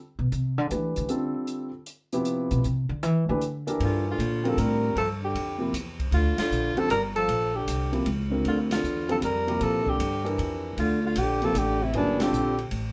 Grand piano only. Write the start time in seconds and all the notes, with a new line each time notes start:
0.69 E3 A3 D4 G4 B4
1.08 D3 G3 C4 F4 A4
2.13 C3 F3 B3 E4 G4
3.29 E3 A3 D4 G4 B4
3.67 E3 D4 G4 A4 A#4
4.43 D3 G3 C4 F4 A#4
5.58 C3 F3 A#3 E4 G4
6.76 D3 G3 C4 F4 A4
7.92 C3 F3 A#3 E4 G4
8.30 D3 G3 C4 F4 A#4
9.08 D3 G3 C4 F4 A4
9.47 C3 F3 A#3 E4 G4
10.24 E3 D4 G4 A4 A#4
11.42 C3 F3 A#3 E4 G4
11.94 C#3 F#3 B3 E4 G#4
12.19 D3 G3 C4 F4 A4